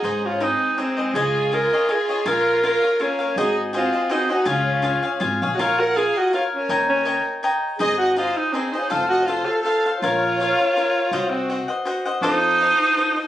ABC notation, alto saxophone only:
X:1
M:3/4
L:1/16
Q:"Swing" 1/4=163
K:Db
V:1 name="Alto saxophone"
A2 F2 E4 C4 | A4 B4 A4 | B4 B4 D4 | A2 z2 F4 E2 G2 |
F8 z3 z/2 G/2 | [K:Bbm] F2 B2 A2 G2 F2 D2- | D2 D4 z6 | A2 G2 F2 E2 C2 E/2 F/2 E |
F2 G2 F2 =A2 A3 z | F12- | F2 C4 z6 | E12 |]